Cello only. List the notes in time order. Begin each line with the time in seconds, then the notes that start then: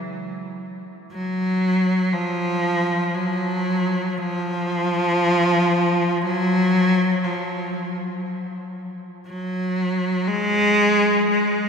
1.12 F#3
2.13 F3
3.15 F#3
4.18 F3
6.21 F#3
7.24 F3
9.27 F#3
10.27 G#3
11.31 G#3